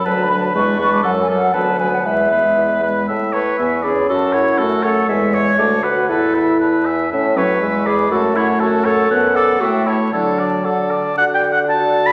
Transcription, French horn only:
\new Staff \with { instrumentName = "French horn" } { \clef bass \time 2/4 \key e \mixolydian \tempo 4 = 119 fis8 fis8 gis8 gis8 | fis8 fis8 fis8 fis8 | gis8 gis4 gis8 | r4 b8 cis'8~ |
cis'4 a4 | gis4 a8 fis'8 | e'4. r8 | cis'8 fis8 gis4 |
a2 | \key d \major b4 a4 | fis4. r8 | fis'4 fis'4 | }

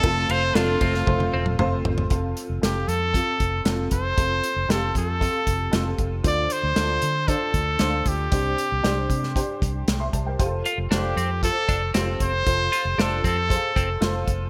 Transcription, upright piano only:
\new Staff \with { instrumentName = "Upright piano" } { \time 4/4 \key f \major \tempo 4 = 116 << { r2. f''4 | r1 | r1 | d4. r2 r8 |
c4. r4. r16 <e'' c'''>16 <c'' a''>16 <bes' g''>16~ | <bes' g''>16 r2. r8. | r1 | } \\ { <a c' f' a'>4 <a c' f' a'>8 <a c' f' a'>8 <a c' f' c''>4 <a c' f' c''>4 | <c' f' a'>4 <c' f' a'>4 <c' f' a'>4 <c' f' a'>4 | <c' f' a'>4 <c' f' g' a'>4 <c' f' a'>4 <c' f' a'>4 | <d' f' c''>4 <d' f' a'>4 <d' f' c''>4 <d' f' c''>4 |
<d' g' c''>4 <d' g' c''>4 <d' g' c''>4 r4 | <f' g' a' c''>4 <f' a' c''>4 <f' a' c''>4 <f' g' a' c''>4 | <f' a' c''>4 <f' a' c''>4 <f' aes' a' c''>4 <f' a' c''>4 | } >> }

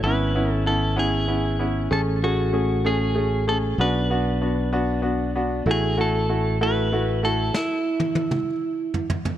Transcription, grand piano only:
\new Staff \with { instrumentName = "Grand piano" } { \time 6/8 \key fis \minor \tempo 4. = 64 <b cis' e'>8 <b cis' e'>8 <b cis' e'>8 <b cis' e'>8 <b cis' e'>8 <b cis' e'>8 | <a cis' gis'>8 <a cis' gis'>8 <a cis' gis'>8 <a cis' gis'>8 <a cis' gis'>8 <a cis' gis'>8 | <b d' fis'>8 <b d' fis'>8 <b d' fis'>8 <b d' fis'>8 <b d' fis'>8 <b d' fis'>8 | <a e' fis'>8 <a e' fis'>8 <a e' fis'>8 <a e' fis'>8 <a e' fis'>8 <a e' fis'>8 |
r2. | }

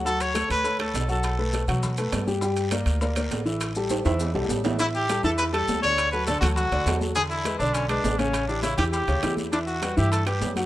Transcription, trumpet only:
\new Staff \with { instrumentName = "Trumpet" } { \time 4/4 \key a \mixolydian \tempo 4 = 203 a'8 cis''4 b'4 a'4 a'8~ | a'4. r2 r8 | r1 | r1 |
e'8 g'4 a'8 b'8 a'4 cis''8~ | cis''8 b'8 a'8 fis'8 fis'4. r8 | gis'8 e'4 d'8 cis'8 d'4 cis'8~ | cis'8 d'8 e'8 g'8 g'4. r8 |
d'8 fis'4 g'8 a'8 g'4 r8 | }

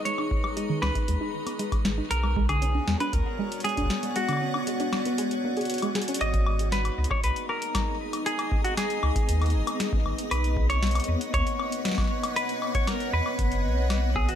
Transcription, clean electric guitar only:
\new Staff \with { instrumentName = "Clean electric guitar" } { \time 4/4 \key gis \minor \tempo 4 = 117 cis''4. b'2 r8 | ais'8. gis'4 b'16 ais'4 gis'4 | fis'2. r4 | dis''4 b'8. cis''16 b'8 ais'4 r8 |
gis'8. fis'16 gis'2 r4 | b'8. cis''4~ cis''16 cis''2 | b'8. cis''16 ais'8 b'4. r8 gis'16 fis'16 | }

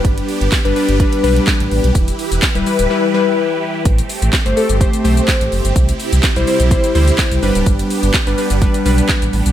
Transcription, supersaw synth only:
\new Staff \with { instrumentName = "Supersaw synth" } { \time 4/4 \key g \major \tempo 4 = 126 << { g'1 | b'1 | g'1~ | g'1~ |
g'1 | } \\ { <b d'>1 | <e e'>1 | <a c'>1 | <c e'>2.~ <c e'>8 <b d'>8~ |
<b d'>1 | } >> }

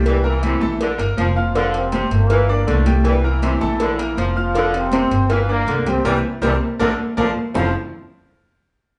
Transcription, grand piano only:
\new Staff \with { instrumentName = "Grand piano" } { \time 4/4 \key f \major \tempo 4 = 160 <g g' g''>8 <bes bes' bes''>8 <e' e'' e'''>8 <a a' a''>4 <bes bes' bes''>4 <f' f'' f'''>8 | <f f' f''>4 <c' c'' c'''>4 <f' f'' f'''>8 <d' d'' d'''>4 <g g' g''>8~ | <g g' g''>8 <bes bes' bes''>8 <e' e'' e'''>8 <a a' a''>4 <bes bes' bes''>4 <f' f'' f'''>8 | <f f' f''>4 <c' c'' c'''>4 <f' f'' f'''>8 <d' d'' d'''>4 <g g' g''>8 |
<g' bes' c''>8 r8 <g' bes' c''>8 r8 <a' bes' d''>8 r8 <a' bes' d''>8 r8 | <f c' e' f' a' c''>8 r2. r8 | }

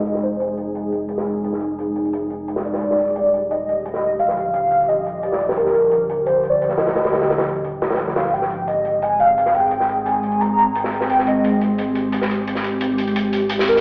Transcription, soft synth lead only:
\new Staff \with { instrumentName = "Soft synth lead" } { \time 4/4 \key ees \major \tempo 4 = 174 ees''8 c''4 r2 r8 | r2. r8 d''8~ | d''2 ees''2 | f''2 ees''4 d''4 |
bes'2 \tuplet 3/2 { c''4 d''8~ } d''8 ees''8~ | ees''4. r2 f''8 | g''4 ees''4 aes''8 f''4 g''8~ | g''4 aes''4 bes''4 g''4 |
g''8 ees''4 r2 r8 | r2. r8 bes'8 | }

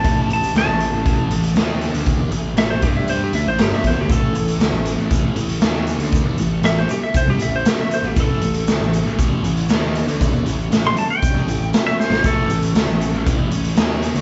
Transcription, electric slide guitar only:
\new Staff \with { instrumentName = "Electric slide guitar" } { \time 4/4 \key a \mixolydian \tempo 4 = 118 a''8 a''8 a''2. | r4 e''16 c''16 g'16 e''16 c''16 g'16 e''16 c''16 g'16 e''16 c''16 g'16 | a'2 r2 | r4 e''16 c''16 g'16 e''16 c''16 g'16 e''16 c''16 g'16 e''16 c''16 g'16 |
a'2 r2 | r4 r16 c'''16 a''16 g''4. e''16 c''8 | a'2 r2 | }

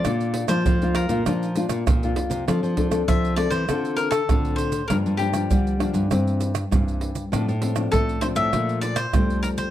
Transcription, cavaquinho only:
\new Staff \with { instrumentName = "Cavaquinho" } { \time 4/4 \key bes \major \tempo 4 = 99 d''8. c''8. bes'4 r4. | \key f \major r4 e''8 d''16 c''8. bes'16 a'8. c''8 | bes'8 g'2 r4. | r4 a'8 c''16 e''8. d''16 c''8. bes'16 c''16 | }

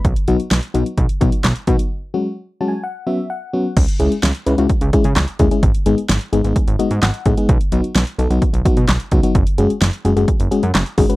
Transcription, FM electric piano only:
\new Staff \with { instrumentName = "FM electric piano" } { \time 4/4 \key cis \minor \tempo 4 = 129 << { r1 | r4 \tuplet 3/2 { r8. a''16 gis''8 } fis''8 e''8 fis''4 | r1 | r2 r8 dis''8 fis''4 |
r1 | r1 | } \\ { r8 <fis b dis' fis'>16 r8. <fis b dis' fis'>16 r8. <fis b dis' fis'>16 r8. <fis b dis' fis'>16 r16 | r8 <fis gis cis' fis'>16 r8. <fis gis cis' fis'>16 r8. <fis b cis' fis'>16 r8. <fis b cis' fis'>16 r16 | r8 <gis cis' e' gis'>16 r8. <gis cis' e' b'>16 <gis cis' e' fis'>16 r8 <gis cis' e' gis'>16 r8. <gis cis' e' gis'>16 <gis cis' e' gis'>16 | r8 <gis b dis' gis'>16 r8. <gis b dis' gis'>16 <gis b dis' gis'>16 r8 <gis b dis' fis'>16 r8. <gis b dis' gis'>16 <gis b dis' gis'>16 |
r8 <fis b dis' fis'>16 r8. <fis b dis' a'>16 <fis b dis' fis'>16 r8 <fis b dis' fis'>16 r8. <fis b dis' fis'>16 <fis b dis' fis'>16 | r8 <gis cis' fis' gis'>16 r8. <gis cis' fis' gis'>16 <gis cis' fis' gis'>16 r8 <gis cis' fis' gis'>16 r8. <gis cis' fis' gis'>16 <gis cis' fis' b'>16 | } >> }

